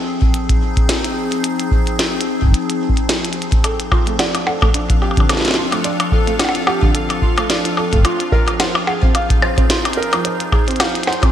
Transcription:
0.00 8.03 F3 medium
0.00 11.32 C4 medium
0.00 3.64 G#4 medium
0.07 3.64 D#4 medium
0.22 kick loud
0.34 closed hi-hat medium
0.49 kick loud
0.49 closed hi-hat medium
0.77 kick loud
0.77 closed hi-hat soft
0.89 snare loud
0.89 closed hi-hat medium
1.04 closed hi-hat medium
1.32 closed hi-hat soft
1.44 closed hi-hat medium
1.60 closed hi-hat medium
1.72 kick loud
1.87 closed hi-hat soft
1.99 snare loud
1.99 closed hi-hat medium
2.21 closed hi-hat soft
2.42 kick medium
2.44 kick medium
2.48 kick medium
2.50 kick medium
2.52 kick loud
2.52 closed hi-hat medium
2.70 closed hi-hat soft
2.89 kick medium
2.97 closed hi-hat soft
3.09 snare loud
3.09 closed hi-hat medium
3.25 closed hi-hat soft
3.33 closed hi-hat soft
3.42 closed hi-hat soft
3.52 kick loud
3.52 closed hi-hat soft
3.64 11.32 F4 medium
3.64 3.75 A4 medium
3.64 11.32 F5 medium
3.64 closed hi-hat medium
3.64 percussion blips soft
3.80 closed hi-hat soft
3.92 4.03 F4 medium
3.92 kick loud
3.92 percussion blips medium
4.00 8.05 D4 medium
4.07 4.16 A3 medium
4.07 closed hi-hat soft
4.19 4.30 D5 medium
4.19 snare loud
4.19 closed hi-hat medium
4.19 percussion blips medium
4.35 closed hi-hat soft
4.35 percussion blips soft
4.47 4.61 A4 medium
4.47 percussion blips medium
4.62 4.67 A3 medium
4.62 kick loud
4.62 percussion blips medium
4.74 4.85 D4 loud
4.74 closed hi-hat medium
4.90 kick loud
4.90 closed hi-hat soft
5.02 5.17 G4 loud
5.02 percussion blips soft
5.11 percussion blips soft
5.17 5.29 D3 medium
5.17 kick loud
5.17 closed hi-hat soft
5.17 percussion blips soft
5.23 8.05 A4 medium
5.29 5.40 A4 medium
5.29 snare medium
5.29 closed hi-hat medium
5.29 percussion blips medium
5.33 snare medium
5.37 snare medium
5.41 snare medium
5.45 snare medium
5.45 closed hi-hat soft
5.48 snare medium
5.51 snare loud
5.54 5.68 F4 medium
5.54 snare loud
5.72 5.81 A3 medium
5.72 closed hi-hat soft
5.72 percussion blips soft
5.84 5.95 D5 medium
5.84 closed hi-hat medium
6.00 closed hi-hat soft
6.00 percussion blips medium
6.12 6.27 A4 medium
6.12 kick loud
6.27 6.32 A3 loud
6.27 closed hi-hat soft
6.39 6.50 D4 loud
6.39 snare loud
6.39 closed hi-hat medium
6.39 percussion blips soft
6.39 percussion blips medium
6.45 percussion blips medium
6.49 percussion blips medium
6.55 closed hi-hat soft
6.67 6.82 G4 loud
6.67 percussion blips medium
6.82 6.94 D3 medium
6.82 kick loud
6.95 7.05 A4 medium
6.95 closed hi-hat medium
7.10 closed hi-hat soft
7.10 percussion blips medium
7.22 7.33 F4 medium
7.22 kick medium
7.37 7.46 A3 medium
7.37 closed hi-hat soft
7.37 percussion blips medium
7.50 7.60 D5 medium
7.50 snare loud
7.50 closed hi-hat medium
7.65 closed hi-hat soft
7.77 7.92 A4 medium
7.77 percussion blips medium
7.92 7.98 A3 loud
7.92 kick soft
7.92 closed hi-hat soft
7.95 kick medium
7.99 kick medium
8.01 kick medium
8.03 11.32 F3 medium
8.03 8.15 F4 loud
8.03 kick loud
8.03 closed hi-hat medium
8.03 percussion blips medium
8.20 closed hi-hat medium
8.32 8.47 A#4 loud
8.32 kick loud
8.48 8.59 F3 medium
8.48 closed hi-hat soft
8.48 percussion blips medium
8.60 8.70 C5 medium
8.60 snare loud
8.60 closed hi-hat medium
8.60 percussion blips loud
8.70 11.32 G#4 medium
8.75 11.32 D#4 medium
8.75 percussion blips medium
8.87 8.98 G#4 medium
8.87 percussion blips medium
9.03 9.11 C4 medium
9.03 kick loud
9.15 9.25 F5 medium
9.15 closed hi-hat medium
9.15 percussion blips medium
9.30 kick loud
9.30 closed hi-hat medium
9.42 9.57 C5 medium
9.42 percussion blips medium
9.58 9.63 C4 loud
9.58 kick loud
9.58 closed hi-hat soft
9.70 9.81 F4 loud
9.70 snare loud
9.70 closed hi-hat medium
9.85 closed hi-hat soft
9.85 percussion blips medium
9.93 10.12 A#4 loud
9.93 closed hi-hat soft
10.03 closed hi-hat soft
10.13 10.24 F3 medium
10.13 closed hi-hat soft
10.13 percussion blips medium
10.25 10.36 C5 medium
10.25 closed hi-hat medium
10.40 closed hi-hat medium
10.52 10.63 G#4 medium
10.52 kick loud
10.52 percussion blips medium
10.68 10.76 C4 medium
10.68 closed hi-hat soft
10.71 closed hi-hat soft
10.76 10.91 F5 medium
10.76 closed hi-hat soft
10.80 snare loud
10.80 closed hi-hat medium
10.80 percussion blips medium
10.85 closed hi-hat soft
10.89 closed hi-hat soft
10.95 closed hi-hat soft
11.03 snare medium
11.03 closed hi-hat soft
11.03 percussion blips medium
11.08 11.22 C5 medium
11.13 closed hi-hat soft
11.23 11.28 C4 loud
11.23 kick loud
11.23 closed hi-hat soft
11.23 percussion blips medium

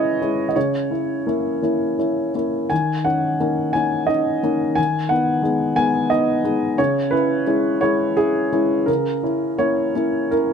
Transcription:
0.00 0.56 C#3 medium
0.00 0.22 G#3 soft
0.00 0.22 C#4 soft
0.00 0.22 E4 soft
0.00 0.58 B4 medium
0.00 0.56 C#5 medium
0.00 0.47 D#5 medium
0.22 0.53 G#3 soft
0.22 0.53 C#4 soft
0.22 0.53 E4 soft
0.49 0.56 D#5 soft
0.56 0.90 C#3 soft
0.56 2.35 C#5 medium
0.91 1.23 C#4 soft
0.91 1.23 E4 soft
1.27 1.59 A#3 soft
1.27 1.59 C#4 soft
1.27 1.60 E4 soft
1.62 1.95 A#3 soft
1.62 1.95 C#4 soft
1.62 1.96 E4 soft
1.99 2.31 C#4 soft
1.99 2.31 E4 soft
2.35 2.67 A#3 soft
2.35 2.67 C#4 soft
2.35 2.67 E4 soft
2.70 3.04 D#3 soft
2.70 3.05 G#5 medium
3.04 3.36 C#4 soft
3.04 3.36 D#4 soft
3.04 3.74 F#5 medium
3.40 3.71 A#3 soft
3.40 3.71 C#4 soft
3.40 3.72 D#4 soft
3.73 4.06 A#3 soft
3.73 4.06 C#4 soft
3.73 4.06 D#4 soft
3.73 4.08 G#5 medium
4.07 4.39 C#4 soft
4.07 4.39 D#4 soft
4.07 4.76 D#5 medium
4.43 4.74 A#3 soft
4.43 4.74 C#4 soft
4.43 4.74 D#4 soft
4.75 5.10 D#3 soft
4.75 5.10 G#5 medium
5.09 5.41 B3 soft
5.09 5.41 D#4 soft
5.09 5.77 F#5 medium
5.42 5.73 G#3 soft
5.42 5.74 B3 soft
5.42 5.74 D#4 soft
5.76 6.08 G#3 soft
5.76 6.08 B3 soft
5.76 6.08 D#4 soft
5.76 6.11 G#5 medium
6.10 6.41 B3 soft
6.10 6.41 D#4 soft
6.10 6.78 D#5 medium
6.44 6.74 G#3 soft
6.44 6.75 B3 soft
6.44 6.75 D#4 soft
6.78 7.11 C#3 medium
6.78 7.12 C#5 medium
7.11 7.43 C#4 soft
7.11 7.43 E4 soft
7.11 7.81 B4 medium
7.47 7.78 G#3 soft
7.47 7.78 C#4 soft
7.47 7.79 E4 soft
7.81 8.13 G#3 soft
7.81 8.14 C#4 soft
7.81 8.14 E4 soft
7.81 8.17 C#5 medium
8.17 8.49 C#4 soft
8.17 8.49 E4 soft
8.17 8.88 G#4 medium
8.52 8.84 G#3 soft
8.52 8.84 C#4 soft
8.52 8.85 E4 soft
8.86 9.22 C#3 soft
8.86 10.30 A#4 medium
9.23 9.55 C#4 soft
9.23 9.56 E4 soft
9.58 9.91 A#3 soft
9.58 9.92 C#4 soft
9.58 9.92 E4 soft
9.58 10.31 C#5 medium
9.95 10.28 A#3 soft
9.95 10.28 C#4 soft
9.95 10.28 E4 soft
10.31 10.53 C#4 soft
10.31 10.53 E4 soft
10.31 10.53 A#4 medium

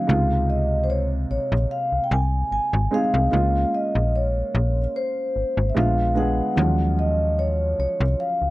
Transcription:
0.00 0.51 F5 medium
0.07 1.26 C#2 loud
0.07 1.53 C3 medium
0.07 1.53 G#3 medium
0.07 1.54 D#4 medium
0.07 1.54 F4 medium
0.50 0.84 D#5 medium
0.84 0.89 C5 medium
0.90 1.08 C#5 medium
1.31 1.39 A#1 soft
1.31 1.72 C#5 medium
1.52 1.67 A#1 medium
1.71 2.02 F5 medium
1.92 2.00 C2 soft
2.04 2.10 G5 medium
2.11 2.44 C2 loud
2.11 2.51 G#5 medium
2.52 2.60 G#1 soft
2.52 2.93 G#5 loud
2.73 2.88 G#1 medium
2.91 3.28 G#3 medium
2.91 3.28 C4 medium
2.91 3.28 D#4 medium
2.91 3.29 G#4 medium
2.91 3.76 F5 loud
3.14 3.29 C2 loud
3.31 3.65 C#2 medium
3.31 4.77 G#3 medium
3.31 4.78 A#3 medium
3.31 4.78 C#4 medium
3.31 4.78 F4 medium
3.75 4.15 D#5 medium
3.95 4.43 A#1 medium
4.16 4.98 C#5 medium
4.55 4.87 A#1 loud
4.96 5.72 C5 medium
5.36 5.44 G#1 soft
5.57 5.72 G#1 medium
5.70 5.76 E5 medium
5.74 6.42 A#1 loud
5.74 6.11 G#3 medium
5.74 6.12 B3 medium
5.74 6.12 D4 medium
5.74 6.12 F4 medium
5.74 6.14 F5 medium
6.15 6.52 G#3 medium
6.15 6.52 B3 medium
6.15 6.52 D4 medium
6.15 6.53 G#4 medium
6.15 7.00 F#5 medium
6.56 7.74 D#2 loud
6.56 8.03 F3 medium
6.56 8.02 F#3 medium
6.56 8.02 G#3 medium
6.56 8.02 C#4 medium
6.99 7.40 D#5 medium
7.39 7.79 C#5 medium
7.79 7.87 C2 soft
7.79 8.21 C#5 medium
8.00 8.15 C2 medium
8.20 8.50 F5 medium
8.42 8.49 C#2 medium

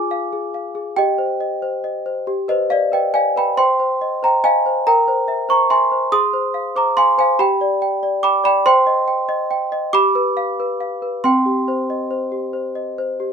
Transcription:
0.00 0.94 F4 medium
0.00 0.25 G#4 medium
0.00 0.95 G#5 medium
0.00 0.98 D6 loud
0.11 0.46 F5 medium
0.33 0.68 G#4 medium
0.54 0.90 F5 medium
0.75 0.98 G#4 soft
0.96 2.23 G4 medium
0.96 1.39 D#5 medium
0.96 2.48 G5 loud
1.18 1.54 C5 soft
1.40 1.76 D#5 medium
1.62 1.97 C5 soft
1.84 2.19 D#5 medium
2.06 2.28 C5 soft
2.27 3.53 G4 medium
2.48 2.83 B4 medium
2.48 2.70 C5 medium
2.48 2.71 D#5 medium
2.70 2.92 D5 medium
2.70 2.92 F5 medium
2.92 3.27 B4 soft
2.92 3.14 D#5 medium
2.92 3.15 G5 medium
3.14 3.49 D5 soft
3.14 3.35 F5 medium
3.14 3.36 G#5 medium
3.36 3.58 B4 soft
3.36 3.57 G5 medium
3.36 3.58 B5 medium
3.57 3.79 C5 medium
3.57 4.19 G5 medium
3.57 4.22 C6 loud
3.80 4.14 C5 soft
4.01 4.35 D#5 medium
4.23 4.57 C5 soft
4.23 4.44 G5 medium
4.23 4.44 A#5 medium
4.44 4.78 D#5 medium
4.44 4.84 F5 medium
4.44 4.86 G#5 loud
4.66 4.87 C5 soft
4.87 6.09 A#4 medium
4.87 5.46 G5 medium
4.87 5.50 A#5 loud
5.08 5.41 C5 medium
5.28 5.62 E5 medium
5.49 5.83 C5 medium
5.49 5.70 A#5 medium
5.49 5.71 C#6 loud
5.70 6.04 E5 medium
5.70 6.10 G#5 medium
5.70 6.12 C6 loud
5.92 6.13 C5 soft
6.12 7.35 G#4 medium
6.12 6.72 C6 medium
6.12 6.75 D#6 loud
6.33 6.67 C5 medium
6.54 6.88 F5 medium
6.76 7.09 C5 medium
6.76 6.96 A#5 medium
6.76 6.97 D6 medium
6.97 7.19 F5 medium
6.97 7.17 G#5 medium
6.97 7.18 C6 loud
7.18 7.39 C5 medium
7.18 7.39 F5 medium
7.18 7.39 G#5 loud
7.39 8.61 G4 medium
7.39 7.81 G5 medium
7.39 8.23 B5 loud
7.61 7.94 D5 medium
7.82 8.15 G5 medium
8.03 8.36 D5 medium
8.23 8.45 G5 medium
8.23 8.43 B5 medium
8.23 8.44 D6 loud
8.44 8.65 D5 medium
8.44 8.64 G5 medium
8.44 8.65 B5 loud
8.66 9.90 C5 medium
8.66 9.06 G5 loud
8.66 9.94 C6 loud
8.87 9.20 D#5 medium
9.08 9.42 G5 medium
9.29 9.63 D#5 medium
9.51 9.85 G5 medium
9.72 9.93 D#5 medium
9.93 11.19 G4 medium
9.93 11.20 B5 loud
9.93 11.23 D6 loud
10.15 10.49 B4 medium
10.37 10.71 F5 medium
10.60 10.94 B4 medium
10.80 11.15 F5 medium
11.02 11.24 B4 soft
11.24 13.33 C4 medium
11.24 13.33 G5 medium
11.24 13.33 C6 loud
11.46 11.80 G4 medium
11.68 12.02 C5 medium
11.90 12.24 D#5 medium
12.11 12.45 C5 medium
12.32 12.66 G4 soft
12.53 12.88 C5 soft
12.75 13.10 D#5 soft
12.98 13.33 C5 medium
13.20 13.33 G4 soft

